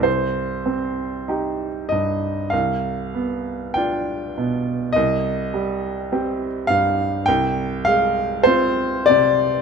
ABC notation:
X:1
M:4/4
L:1/8
Q:1/4=50
K:Cm
V:1 name="Upright piano"
c3 e f2 g z | e3 f g f c d |]
V:2 name="Upright piano"
C,, C [EG] G,, C,, =B, [DF] =B,, | C,, G, [CG] G,, C,, A, [CF] C, |]